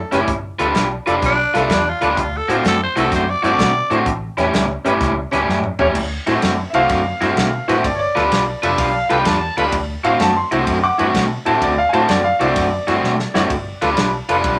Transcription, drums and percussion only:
0.12 snare soft
0.12 closed hi-hat medium
0.28 kick loud
0.28 closed hi-hat medium
0.59 closed hi-hat medium
0.75 snare loud
0.75 closed hi-hat medium
1.07 closed hi-hat medium
1.22 kick loud
1.22 closed hi-hat medium
1.55 snare soft
1.55 closed hi-hat medium
1.70 kick medium
1.70 snare loud
1.70 closed hi-hat medium
2.02 closed hi-hat medium
2.17 kick loud
2.17 closed hi-hat medium
2.50 closed hi-hat medium
2.65 snare loud
2.65 closed hi-hat medium
2.97 closed hi-hat medium
3.12 kick loud
3.12 snare soft
3.12 closed hi-hat medium
3.44 closed hi-hat medium
3.59 kick medium
3.59 snare loud
3.59 closed hi-hat medium
3.91 closed hi-hat medium
4.06 kick loud
4.06 closed hi-hat medium
4.38 snare soft
4.38 closed hi-hat medium
4.54 snare loud
4.54 closed hi-hat medium
4.86 closed hi-hat medium
5.01 kick loud
5.01 snare soft
5.01 closed hi-hat medium
5.33 snare soft
5.33 closed hi-hat medium
5.49 snare medium
5.64 mid tom medium
5.79 floor tom loud
5.95 kick loud
5.95 crash loud
6.27 snare soft
6.27 ride medium
6.42 snare loud
6.42 ride medium
6.74 ride medium
6.89 kick loud
6.89 snare soft
6.89 ride medium
7.21 snare soft
7.21 ride medium
7.37 kick medium
7.37 snare loud
7.37 ride medium
7.69 snare soft
7.69 ride medium
7.84 kick loud
7.84 ride medium
8.17 snare soft
8.17 ride medium
8.32 snare loud
8.32 ride medium
8.63 ride medium
8.78 kick loud
8.78 ride loud
9.10 ride medium
9.25 kick medium
9.25 snare loud
9.25 ride medium
9.58 ride medium
9.72 kick loud
9.72 ride medium
10.04 ride medium
10.20 snare loud
10.20 ride medium
10.52 ride medium
10.67 kick loud
10.67 ride medium
10.99 ride medium
11.15 kick medium
11.15 snare loud
11.15 ride medium
11.46 ride medium
11.62 kick loud
11.62 ride medium
11.94 ride medium
12.09 snare loud
12.09 ride medium
12.41 ride medium
12.56 kick loud
12.56 snare soft
12.56 ride medium
12.88 snare soft
12.88 ride medium
13.04 snare medium
13.20 snare medium
13.35 snare loud
13.50 kick loud
13.50 ride medium
13.82 snare soft
13.82 ride medium
13.97 snare loud
13.97 ride medium
14.29 ride medium
14.44 kick loud
14.44 ride medium

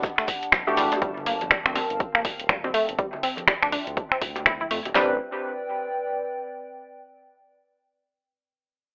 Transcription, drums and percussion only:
0.03 kick loud
0.03 closed hi-hat medium
0.03 high bongo medium
0.03 shekere medium
0.18 finger snap medium
0.18 shekere soft
0.28 kick medium
0.28 open hi-hat loud
0.28 shekere medium
0.42 closed hi-hat medium
0.42 shekere soft
0.52 finger snap loud
0.52 kick loud
0.52 closed hi-hat medium
0.52 high bongo medium
0.52 shekere medium
0.67 high conga medium
0.67 shekere soft
0.77 open hi-hat loud
0.77 shekere loud
0.91 closed hi-hat medium
0.91 high bongo medium
0.91 shekere soft
1.02 kick loud
1.02 closed hi-hat soft
1.17 low conga medium
1.26 open hi-hat loud
1.41 closed hi-hat medium
1.41 high bongo soft
1.41 high conga medium
1.51 finger snap loud
1.51 kick loud
1.51 closed hi-hat medium
1.66 finger snap medium
1.66 high conga medium
1.75 open hi-hat loud
1.75 high bongo medium
1.90 closed hi-hat medium
2.00 kick loud
2.00 closed hi-hat medium
2.15 finger snap medium
2.25 kick medium
2.25 open hi-hat loud
2.25 high bongo medium
2.40 closed hi-hat medium
2.49 finger snap loud
2.49 kick loud
2.49 closed hi-hat medium
2.64 high bongo medium
2.64 high conga medium
2.74 open hi-hat loud
2.89 closed hi-hat medium
2.99 kick loud
2.99 closed hi-hat soft
3.13 high bongo soft
3.13 low conga medium
3.23 open hi-hat loud
3.37 closed hi-hat medium
3.37 high conga medium
3.47 finger snap loud
3.47 kick loud
3.47 closed hi-hat soft
3.47 high bongo medium
3.62 finger snap medium
3.62 high conga medium
3.72 open hi-hat loud
3.87 closed hi-hat medium
3.97 kick loud
3.97 closed hi-hat medium
3.97 high bongo soft
4.12 finger snap medium
4.22 kick medium
4.22 open hi-hat loud
4.36 closed hi-hat medium
4.36 high bongo medium
4.46 finger snap loud
4.46 kick loud
4.46 closed hi-hat soft
4.60 high conga medium
4.71 open hi-hat loud
4.85 closed hi-hat medium
4.85 high bongo medium
4.95 snare loud
4.95 clap medium

